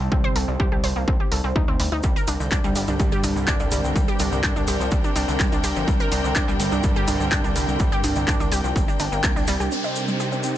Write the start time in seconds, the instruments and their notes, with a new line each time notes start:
Already playing: analog synth pad C3 G3 C4, ambient pad D#4 C5 A5
0.00 analog synth bass C2
0.12 analog synth bass C2, synth arpeggio sound C4, kick
0.24 synth arpeggio sound C5
0.36 analog synth bass C2, synth arpeggio sound A4, open hi-hat
0.48 analog synth bass C2, synth arpeggio sound G3
0.60 analog synth bass C2, synth arpeggio sound G4, kick
0.72 analog synth bass C2, analog synth pad C3 G3 C4, synth arpeggio sound G4
0.84 analog synth bass C2, synth arpeggio sound C5, open hi-hat
0.96 analog synth bass C2, synth arpeggio sound A#3
1.08 analog synth bass C2, synth arpeggio sound C4, kick
1.20 synth arpeggio sound G4
1.32 analog synth bass C2, synth arpeggio sound A4, open hi-hat
1.44 analog synth bass C2, synth arpeggio sound C4
1.56 analog synth bass D2, synth arpeggio sound D#4, kick
1.68 analog synth bass D2, synth arpeggio sound C4
1.80 analog synth bass D2, synth arpeggio sound G3, open hi-hat
1.92 analog synth bass D2, synth arpeggio sound D#4
2.03 analog synth bass C2, string section C3 C4 D4 A#4 G5, synth arpeggio sound G3, ambient pad D4, kick, shaker
2.16 synth arpeggio sound A#4, shaker
2.27 analog synth bass C2, synth arpeggio sound D4, open hi-hat, shaker
2.40 analog synth bass C2, synth arpeggio sound D3, shaker
2.52 analog synth bass C2, synth arpeggio sound D4, kick, clap, shaker
2.64 analog synth bass C2, analog synth pad G2 D3 G3, synth arpeggio sound G3, shaker
2.76 analog synth bass G1, synth arpeggio sound G3, ambient pad A#4, open hi-hat, shaker
2.87 analog synth bass C2, synth arpeggio sound D4, shaker
3.00 analog synth bass C2, analog synth pad G2 D3 G3, synth arpeggio sound G3, kick, shaker
3.12 synth arpeggio sound G4, shaker
3.23 analog synth bass C2, synth arpeggio sound D4, open hi-hat, shaker
3.28 ambient pad G5
3.36 analog synth bass C2, synth arpeggio sound D3, shaker
3.48 analog synth bass C2, synth arpeggio sound D4, kick, clap, shaker
3.60 analog synth bass C2, synth arpeggio sound D4, shaker
3.71 analog synth bass C2, synth arpeggio sound G3, open hi-hat, shaker
3.84 analog synth bass C2, shaker
3.96 analog synth bass C2, synth arpeggio sound G3, kick, shaker
4.08 synth arpeggio sound G4, shaker
4.19 analog synth bass C2, synth arpeggio sound D4, open hi-hat, shaker
4.32 analog synth bass C2, synth arpeggio sound D3, shaker
4.43 analog synth bass C2, synth arpeggio sound D4, kick, clap, shaker
4.56 analog synth bass C2, analog synth pad G2 D3 G3, synth arpeggio sound D4, shaker
4.67 analog synth bass C2, synth arpeggio sound G4, open hi-hat, shaker
4.80 analog synth bass C2, synth arpeggio sound F3, shaker
4.91 analog synth bass C2, synth arpeggio sound G3, kick, shaker
5.04 synth arpeggio sound D4, shaker
5.16 analog synth bass C2, synth arpeggio sound D4, open hi-hat, shaker
5.28 analog synth bass C2, synth arpeggio sound D3, shaker
5.40 analog synth bass C2, synth arpeggio sound G3, kick, clap, shaker
5.52 analog synth bass C2, synth arpeggio sound D4, shaker
5.64 analog synth bass C2, synth arpeggio sound G4, open hi-hat, shaker
5.76 analog synth bass G1, synth arpeggio sound F3, shaker
5.88 analog synth bass C2, synth arpeggio sound G3, kick, shaker
6.00 synth arpeggio sound A#4, shaker
6.12 analog synth bass C2, synth arpeggio sound D4, open hi-hat, shaker
6.24 analog synth bass C2, synth arpeggio sound D3, shaker
6.35 analog synth bass C2, synth arpeggio sound D4, kick, clap, shaker
6.48 analog synth bass C2, analog synth pad G2 D3 G3, synth arpeggio sound G3, shaker
6.60 analog synth bass G1, synth arpeggio sound G3, open hi-hat, shaker
6.72 analog synth bass C2, synth arpeggio sound D4, shaker
6.83 analog synth bass C2, analog synth pad G2 D3 G3, synth arpeggio sound G3, kick, shaker
6.96 synth arpeggio sound G4, shaker
7.08 analog synth bass C2, synth arpeggio sound D4, open hi-hat, shaker
7.20 analog synth bass C2, synth arpeggio sound D3, shaker
7.32 analog synth bass C2, synth arpeggio sound D4, kick, clap, shaker
7.44 analog synth bass C2, synth arpeggio sound D4, shaker
7.56 analog synth bass C2, synth arpeggio sound G3, open hi-hat, shaker
7.68 analog synth bass C2, shaker
7.80 analog synth bass C2, synth arpeggio sound G3, kick, shaker
7.92 synth arpeggio sound G4, shaker
8.04 analog synth bass C2, synth arpeggio sound D4, open hi-hat, shaker
8.16 analog synth bass C2, synth arpeggio sound D3, shaker
8.28 analog synth bass C2, synth arpeggio sound D4, kick, clap, shaker
8.40 analog synth bass C2, synth arpeggio sound D4, shaker
8.52 analog synth bass C2, synth arpeggio sound G4, open hi-hat, shaker
8.64 analog synth bass C2, synth arpeggio sound F3, shaker
8.76 analog synth bass G1, synth arpeggio sound G3, kick, shaker
8.88 synth arpeggio sound D4, shaker
9.00 analog synth bass G1, synth arpeggio sound D4, open hi-hat, shaker
9.12 analog synth bass G1, synth arpeggio sound A#3, shaker
9.24 analog synth bass C2, synth arpeggio sound A#3, kick, clap, shaker
9.36 analog synth bass C2, synth arpeggio sound D4, shaker
9.47 analog synth bass C2, synth arpeggio sound G3, open hi-hat, shaker
9.60 analog synth bass C2, synth arpeggio sound G4, shaker
9.71 string section C3 C4 D#4 G4 G5, analog synth pad C3 G3 C4, synth arpeggio sound C4, ambient pad D#4, downlifter, shaker
9.84 synth arpeggio sound D#5, shaker
9.96 synth arpeggio sound A4, shaker
10.08 synth arpeggio sound G3, shaker
10.20 synth arpeggio sound G4, ambient pad C5, shaker
10.32 synth arpeggio sound C4, shaker
10.43 synth arpeggio sound C4, shaker